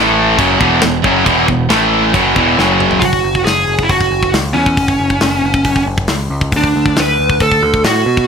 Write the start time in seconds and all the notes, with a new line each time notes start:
Already playing: A1 A2 E3 A3
0.38 F#1 F#2 C#3 F#3, kick, china
0.61 E1 E2 B2 E3, kick
0.81 E1 E2 B2, snare, china
1.04 F#1 F#2 C#3 F#3, kick
1.26 E1 E2 B2 E3, kick, china
1.48 E1 E2 B2, kick
1.69 A1 A2 E3 A3, snare, china
2.14 F#1 F#2 C#3 F#3, kick, china
2.36 E1 E2 B2 E3, kick
2.58 F#1 F#2 C#3 F#3, snare
2.80 mid tom
2.91 floor tom
3.00 F#1 F#4, kick, open hi-hat
3.13 kick
3.23 F#1
3.35 kick
3.45 F#1 G#4, snare, open hi-hat
3.68 F#1
3.79 E4, kick
3.89 F#1 F#4, kick, open hi-hat
4.01 kick
4.11 F#1
4.23 kick
4.33 C#2, snare, open hi-hat
4.53 E2 C#4
4.66 kick
4.77 F#1, kick, open hi-hat
4.88 kick
5.00 F#1
5.10 kick
5.21 F#1, snare, open hi-hat
5.44 F#1
5.54 kick
5.65 F#1, kick, open hi-hat
5.76 kick
5.86 F#1
5.98 kick
6.08 C#2, snare, open hi-hat
6.30 C#2
6.41 kick
6.52 D2, kick, open hi-hat
6.57 D4
6.64 kick
6.76 D2
6.86 kick
6.96 D2 B4, snare, open hi-hat
7.19 D2
7.30 kick
7.40 D2 A4, kick, open hi-hat
7.51 kick
7.62 D2
7.74 kick
7.84 A2 F#4, snare, open hi-hat
8.06 B2
8.17 kick